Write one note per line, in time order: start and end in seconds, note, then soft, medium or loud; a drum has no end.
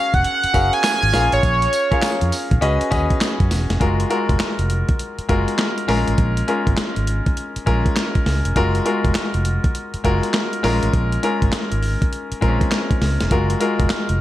0.00 0.53 C#4 medium
0.00 0.54 F#4 medium
0.00 0.54 G#4 medium
0.00 0.54 A#4 medium
0.00 0.22 C#5 medium
0.00 0.16 F5 loud
0.00 0.55 F5 medium
0.14 0.22 F1 loud
0.14 0.75 F#5 loud
0.14 kick medium
0.14 closed hi-hat medium
0.24 closed hi-hat medium
0.44 muted fingered electric bass stroke soft
0.44 closed hi-hat medium
0.53 0.69 F#1 medium
0.53 1.11 C#4 medium
0.53 1.13 F#4 medium
0.53 1.12 G#4 medium
0.53 1.12 A#4 medium
0.53 1.12 F5 medium
0.53 kick medium
0.53 closed hi-hat medium
0.53 tambourine medium
0.73 1.33 G#5 loud
0.73 closed hi-hat soft
0.84 snare loud
0.84 clap medium
0.84 closed hi-hat medium
0.84 tambourine loud
1.03 1.11 G#1 loud
1.03 closed hi-hat soft
1.13 1.72 C#4 medium
1.13 1.73 F4 medium
1.13 1.73 G#4 medium
1.13 1.73 A#4 medium
1.13 1.73 F5 loud
1.13 snare medium
1.13 open hi-hat medium
1.13 tambourine medium
1.32 1.41 A1 medium
1.32 2.48 C#5 medium
1.32 closed hi-hat medium
1.43 1.66 A#1 loud
1.43 kick loud
1.43 closed hi-hat medium
1.43 tambourine medium
1.62 closed hi-hat medium
1.73 closed hi-hat medium
1.73 tambourine medium
1.91 2.59 C#4 medium
1.91 2.59 F4 medium
1.91 2.59 G#4 medium
1.91 2.59 A#4 medium
1.91 2.60 F5 medium
1.91 muted fingered electric bass stroke soft
1.91 kick medium
1.91 closed hi-hat medium
2.02 snare loud
2.02 clap loud
2.02 closed hi-hat medium
2.02 tambourine loud
2.21 2.30 F2 medium
2.21 closed hi-hat medium
2.32 open hi-hat medium
2.32 tambourine medium
2.51 2.60 A#1 medium
2.51 kick loud
2.51 closed hi-hat medium
2.61 2.77 C#2 loud
2.61 2.87 C#4 medium
2.61 2.87 F#4 medium
2.61 2.87 G#4 medium
2.61 2.87 B4 medium
2.61 2.87 D#5 loud
2.61 closed hi-hat medium
2.81 closed hi-hat medium
2.91 3.06 D#2 medium
2.91 3.52 C#4 loud
2.91 3.52 F#4 medium
2.91 3.52 G#4 medium
2.91 3.53 B4 medium
2.91 3.53 D#5 loud
2.91 kick medium
2.91 closed hi-hat medium
2.91 tambourine medium
3.10 kick medium
3.10 closed hi-hat medium
3.21 snare loud
3.21 clap medium
3.21 closed hi-hat medium
3.21 tambourine medium
3.40 3.48 F#2 medium
3.40 kick medium
3.40 closed hi-hat soft
3.51 3.66 E1 loud
3.51 snare medium
3.51 open hi-hat medium
3.51 tambourine medium
3.70 3.78 F1 medium
3.70 snare medium
3.70 closed hi-hat medium
3.80 4.04 F#1 loud
3.80 4.03 G#3 medium
3.80 4.03 F4 medium
3.80 4.04 F#4 medium
3.80 4.04 A#4 medium
3.80 kick loud
3.80 closed hi-hat medium
4.00 closed hi-hat medium
4.09 4.93 G#3 medium
4.09 4.93 F4 medium
4.09 4.93 F#4 medium
4.09 4.94 A#4 medium
4.09 closed hi-hat medium
4.29 4.38 F1 medium
4.29 kick loud
4.29 closed hi-hat soft
4.40 snare loud
4.40 clap loud
4.40 closed hi-hat medium
4.59 4.82 F1 medium
4.59 closed hi-hat soft
4.70 closed hi-hat medium
4.89 kick loud
4.89 closed hi-hat soft
4.99 closed hi-hat medium
5.18 muted fingered electric bass stroke soft
5.18 closed hi-hat medium
5.29 5.44 F#1 medium
5.29 5.86 G#3 medium
5.29 5.87 F4 medium
5.29 5.89 F#4 medium
5.29 5.87 A#4 medium
5.29 kick medium
5.29 closed hi-hat medium
5.48 closed hi-hat soft
5.59 snare loud
5.59 clap medium
5.59 closed hi-hat medium
5.78 closed hi-hat soft
5.88 6.03 A#1 loud
5.88 6.39 G#3 medium
5.88 6.39 C#4 medium
5.88 6.39 F4 medium
5.88 6.40 A#4 loud
5.88 snare medium
5.88 open hi-hat medium
6.08 6.16 A1 medium
6.08 closed hi-hat medium
6.18 6.41 A#1 loud
6.18 kick loud
6.18 closed hi-hat medium
6.37 closed hi-hat medium
6.47 7.31 G#3 medium
6.47 7.31 C#4 medium
6.47 7.31 F4 medium
6.47 7.31 A#4 medium
6.47 closed hi-hat medium
6.67 6.75 G#1 medium
6.67 kick medium
6.67 closed hi-hat soft
6.77 muted fingered electric bass stroke soft
6.77 snare loud
6.77 clap loud
6.77 closed hi-hat medium
6.96 7.20 G#1 medium
6.96 closed hi-hat soft
7.07 closed hi-hat medium
7.26 kick medium
7.26 closed hi-hat soft
7.37 closed hi-hat medium
7.56 muted fingered electric bass stroke soft
7.56 closed hi-hat medium
7.66 7.82 A#1 loud
7.66 8.27 G#3 medium
7.66 8.28 C#4 medium
7.66 8.28 F4 medium
7.66 8.28 A#4 loud
7.66 kick medium
7.66 closed hi-hat medium
7.86 kick medium
7.86 closed hi-hat medium
7.96 snare loud
7.96 clap medium
7.96 closed hi-hat medium
8.15 kick medium
8.15 closed hi-hat soft
8.26 8.41 C#2 medium
8.26 snare medium
8.26 open hi-hat medium
8.45 8.54 F1 medium
8.45 closed hi-hat medium
8.56 8.79 F#1 loud
8.56 8.79 G#3 medium
8.56 8.79 F4 medium
8.56 8.79 F#4 medium
8.56 8.79 A#4 loud
8.56 kick medium
8.56 closed hi-hat medium
8.75 closed hi-hat medium
8.85 9.69 G#3 medium
8.85 9.69 F4 medium
8.85 9.69 F#4 medium
8.85 9.69 A#4 medium
8.85 closed hi-hat medium
9.05 9.13 F1 medium
9.05 kick medium
9.05 closed hi-hat medium
9.15 muted fingered electric bass stroke soft
9.15 snare loud
9.15 clap loud
9.15 closed hi-hat medium
9.34 9.57 F1 medium
9.34 closed hi-hat soft
9.45 closed hi-hat medium
9.64 kick medium
9.64 closed hi-hat soft
9.75 closed hi-hat medium
9.94 muted fingered electric bass stroke soft
9.94 closed hi-hat medium
10.04 10.19 F#1 medium
10.04 10.61 G#3 medium
10.04 10.62 F4 medium
10.04 10.64 F#4 medium
10.04 10.63 A#4 loud
10.04 kick medium
10.04 closed hi-hat medium
10.23 closed hi-hat medium
10.34 snare loud
10.34 clap medium
10.34 closed hi-hat medium
10.53 closed hi-hat soft
10.63 10.79 A#1 loud
10.63 11.14 G#3 loud
10.63 11.15 C#4 medium
10.63 11.15 F4 medium
10.63 11.15 A#4 loud
10.63 snare medium
10.63 open hi-hat medium
10.83 10.91 A1 medium
10.83 closed hi-hat medium
10.93 11.16 A#1 loud
10.93 kick loud
10.93 closed hi-hat medium
11.12 closed hi-hat medium
11.23 12.06 G#3 medium
11.23 12.06 C#4 medium
11.23 12.06 F4 medium
11.23 12.07 A#4 medium
11.23 closed hi-hat medium
11.42 11.50 G#1 medium
11.42 kick medium
11.42 closed hi-hat soft
11.52 muted fingered electric bass stroke soft
11.52 snare loud
11.52 clap medium
11.52 closed hi-hat medium
11.72 11.95 G#1 medium
11.72 closed hi-hat medium
11.83 open hi-hat medium
12.02 kick medium
12.02 closed hi-hat soft
12.13 closed hi-hat medium
12.32 muted fingered electric bass stroke soft
12.32 closed hi-hat soft
12.41 12.57 A#1 loud
12.41 13.03 G#3 medium
12.41 12.50 C4 medium
12.41 13.03 F4 medium
12.41 13.03 A#4 loud
12.41 kick medium
12.41 closed hi-hat medium
12.48 13.06 C#4 medium
12.61 kick medium
12.61 closed hi-hat medium
12.71 snare loud
12.71 clap medium
12.71 closed hi-hat medium
12.91 kick medium
12.91 closed hi-hat soft
13.02 13.16 C#2 medium
13.02 snare medium
13.02 open hi-hat medium
13.20 13.29 F1 medium
13.20 snare medium
13.20 closed hi-hat medium
13.31 13.54 F#1 loud
13.31 13.54 G#3 medium
13.31 13.54 F4 medium
13.31 13.54 F#4 medium
13.31 13.54 A#4 loud
13.31 kick loud
13.31 closed hi-hat medium
13.50 closed hi-hat medium
13.60 14.21 G#3 medium
13.60 14.21 F4 medium
13.60 14.21 F#4 medium
13.60 14.21 A#4 medium
13.60 closed hi-hat medium
13.80 13.88 F1 loud
13.80 kick medium
13.80 closed hi-hat medium
13.90 snare loud
13.90 clap loud
13.90 closed hi-hat medium
14.09 14.21 F1 medium
14.09 closed hi-hat medium